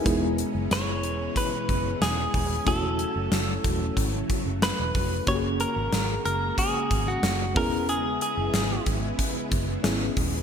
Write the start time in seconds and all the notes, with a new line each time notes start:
Already playing: C#4 D#4
0.04 E1 B2 E3 G#3 B3 E4 G#4, kick, closed hi-hat
0.38 closed hi-hat
0.55 F#1
0.71 F#1 C#5, snare, closed hi-hat
1.03 E1, closed hi-hat
1.36 B4, kick, closed hi-hat
1.69 F#1, kick, closed hi-hat
2.01 E1 G#4, snare, closed hi-hat
2.34 D#1, kick, open hi-hat
2.65 E1 C#3 F#3 A3 C#4 E4 F#4 A4, kick, closed hi-hat
2.99 closed hi-hat
3.16 F#1
3.32 F#1, snare, closed hi-hat
3.64 E1, kick, closed hi-hat
3.97 G#1, kick, closed hi-hat
4.30 muted fingered electric bass stroke, kick, closed hi-hat
4.46 F#1
4.62 B4, snare, closed hi-hat
4.79 E1
4.95 F1, kick, open hi-hat
5.26 F#1 G#3 A#3 C#4 F#4 G4 C#5, kick, closed hi-hat
5.35 G#4
5.60 A#4, closed hi-hat
5.76 G#1
5.92 G#1, snare, closed hi-hat
6.25 F#1 A#4, closed hi-hat
6.58 G#4, kick, closed hi-hat
6.91 G#1, kick, closed hi-hat
7.08 F#4
7.23 F#1, snare, closed hi-hat
7.54 E1 B3 C#4 E4 G#4 A#4, kick, open hi-hat
7.89 G#4, closed hi-hat
8.21 G#4, closed hi-hat
8.37 F#1
8.53 G#1, snare, closed hi-hat
8.86 G#1, kick, closed hi-hat
9.19 kick, closed hi-hat
9.51 F#1, kick, closed hi-hat
9.83 G#1 B3 C#4 E4 G#4, snare, closed hi-hat
10.17 D#1, kick, open hi-hat